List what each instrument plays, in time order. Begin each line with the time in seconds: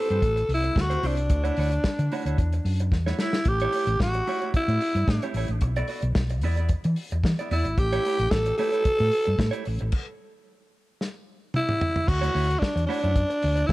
Already playing: clean electric guitar C4
0.00 alto saxophone A4
0.10 fingered electric bass G2, clean electric guitar C4 E4 G4 C5, closed hi-hat
0.22 fingered electric bass A1, muted clean electric guitar stroke, kick, closed hi-hat
0.36 muted clean electric guitar stroke, closed hi-hat
0.49 fingered electric bass C2, open hi-hat
0.54 alto saxophone E4
0.64 muted clean electric guitar stroke, closed hi-hat
0.76 fingered electric bass D2, muted clean electric guitar stroke, kick, snare
0.81 alto saxophone F#4
0.90 clean electric guitar C4 E4 G4 C5, closed hi-hat
1.03 fingered electric bass C2, clean electric guitar C4 E4 G4 C5, alto saxophone D4, open hi-hat
1.17 muted clean electric guitar stroke, closed hi-hat
1.30 fingered electric bass D2, muted clean electric guitar stroke, kick, closed hi-hat
1.44 clean electric guitar A3 E4 F#4 C#5, closed hi-hat
1.57 fingered electric bass D2, clean electric guitar A3 E4 F#4 C#5, open hi-hat
1.72 muted clean electric guitar stroke, closed hi-hat
1.84 muted fingered electric bass stroke, muted clean electric guitar stroke, kick, snare
1.99 fingered electric bass D3, muted clean electric guitar stroke, closed hi-hat
2.12 clean electric guitar A3 E4 F#4 C#5, open hi-hat
2.25 fingered electric bass D2, clean electric guitar A3 E4 F#4 C#5, closed hi-hat
2.38 fingered electric bass E2, muted clean electric guitar stroke, kick, closed hi-hat
2.52 muted clean electric guitar stroke, closed hi-hat
2.65 fingered electric bass F#2, open hi-hat
2.80 muted clean electric guitar stroke, closed hi-hat
2.92 fingered electric bass E2, muted clean electric guitar stroke, kick, snare
3.06 clean electric guitar A3 E4 F#4 C#5, snare
3.19 clean electric guitar A3 E4 F#4 C#5, alto saxophone E4, snare
3.33 muted clean electric guitar stroke, snare
3.45 fingered electric bass A1, alto saxophone G4, muted clean electric guitar stroke, kick, closed hi-hat
3.60 clean electric guitar A3 E4 G4 C#5, closed hi-hat
3.72 clean electric guitar A3 E4 G4 C#5, open hi-hat
3.87 fingered electric bass A1, muted clean electric guitar stroke, closed hi-hat
4.00 fingered electric bass A1, alto saxophone F#4, muted clean electric guitar stroke, kick, snare
4.14 muted clean electric guitar stroke, closed hi-hat
4.27 clean electric guitar A3 E4 G4 C#5, open hi-hat
4.42 clean electric guitar A3 E4 G4 C#5, closed hi-hat
4.54 alto saxophone E4, muted fingered electric bass stroke, muted clean electric guitar stroke, kick, closed hi-hat
4.68 fingered electric bass A2, muted clean electric guitar stroke, closed hi-hat
4.81 open hi-hat
4.95 fingered electric bass G2, muted clean electric guitar stroke, closed hi-hat
5.08 fingered electric bass A2, muted clean electric guitar stroke, kick, snare
5.22 clean electric guitar A3 E4 G4 C#5, closed hi-hat
5.34 fingered electric bass A1, clean electric guitar A3 E4 G4 C#5, open hi-hat
5.48 fingered electric bass A1, muted clean electric guitar stroke, closed hi-hat
5.61 fingered electric bass B1, muted clean electric guitar stroke, kick, closed hi-hat
5.76 clean electric guitar B3 F#4 A4 D5, closed hi-hat
5.88 clean electric guitar B3 F#4 A4 D5, open hi-hat
6.02 fingered electric bass B1, muted clean electric guitar stroke, closed hi-hat
6.15 fingered electric bass B1, muted clean electric guitar stroke, kick, snare
6.29 muted clean electric guitar stroke, closed hi-hat
6.41 fingered electric bass E2, clean electric guitar B3 E4 G#4 D5, open hi-hat
6.57 clean electric guitar B3 E4 G#4 D5, closed hi-hat
6.69 muted clean electric guitar stroke, kick, closed hi-hat
6.84 fingered electric bass E3, muted clean electric guitar stroke, closed hi-hat
6.96 open hi-hat
7.11 fingered electric bass E2, muted clean electric guitar stroke, closed hi-hat
7.23 fingered electric bass E3, muted clean electric guitar stroke, kick, snare
7.39 clean electric guitar B3 E4 G#4 D5, closed hi-hat
7.51 fingered electric bass E2, clean electric guitar B3 E4 G#4 D5, alto saxophone E4, open hi-hat
7.65 fingered electric bass G#1, muted clean electric guitar stroke, closed hi-hat
7.77 fingered electric bass A1, alto saxophone G4, muted clean electric guitar stroke, kick, closed hi-hat
7.92 clean electric guitar A3 E4 G4 C#5, closed hi-hat
8.05 clean electric guitar A3 E4 G4 C#5, open hi-hat
8.19 fingered electric bass A1, muted clean electric guitar stroke, closed hi-hat
8.31 fingered electric bass A1, alto saxophone A4, muted clean electric guitar stroke, kick, snare
8.46 muted clean electric guitar stroke, closed hi-hat
8.58 clean electric guitar A3 E4 G4 C#5, alto saxophone A4, open hi-hat
8.72 clean electric guitar A3 E4 G4 C#5, closed hi-hat
8.85 muted clean electric guitar stroke, muted fingered electric bass stroke, kick, closed hi-hat
8.98 fingered electric bass A2, muted clean electric guitar stroke, closed hi-hat
9.12 open hi-hat
9.25 fingered electric bass G2, muted clean electric guitar stroke, closed hi-hat
9.39 fingered electric bass A2, muted clean electric guitar stroke, kick, snare
9.51 clean electric guitar A3 E4 G4 C#5, closed hi-hat
9.65 fingered electric bass A1, muted clean electric guitar stroke, open hi-hat
9.79 fingered electric bass A1, muted clean electric guitar stroke, closed hi-hat
9.92 kick, crash
11.01 snare
11.54 alto saxophone E4, mid tom
11.69 mid tom
11.81 floor tom
11.96 floor tom
12.07 fingered electric bass D2, alto saxophone F#4, muted clean electric guitar stroke, kick, crash
12.21 clean electric guitar A3 E4 F#4 C#5, closed hi-hat
12.33 fingered electric bass D2, clean electric guitar A3 E4 F#4 C#5, open hi-hat
12.49 muted clean electric guitar stroke, closed hi-hat
12.59 alto saxophone D4, muted clean electric guitar stroke, kick, snare
12.76 fingered electric bass E2, muted clean electric guitar stroke, closed hi-hat
12.86 clean electric guitar A3 E4 F#4 C#5, alto saxophone D4, open hi-hat
13.02 fingered electric bass F#2, clean electric guitar A3 E4 F#4 C#5, closed hi-hat
13.15 muted clean electric guitar stroke, kick, closed hi-hat
13.30 muted clean electric guitar stroke, closed hi-hat
13.42 fingered electric bass D2, open hi-hat
13.55 muted clean electric guitar stroke, closed hi-hat
13.67 fingered electric bass D3, alto saxophone E4, kick